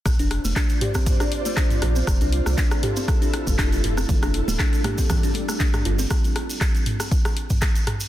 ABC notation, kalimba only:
X:1
M:4/4
L:1/16
Q:"Swing 16ths" 1/4=119
K:Bblyd
V:1 name="Kalimba"
z D z A, D z G C z D z A, D z F C | z D z A, D z G C z D z A, D z F C | z D z A, D z G C z D z A, D z F C | z16 |]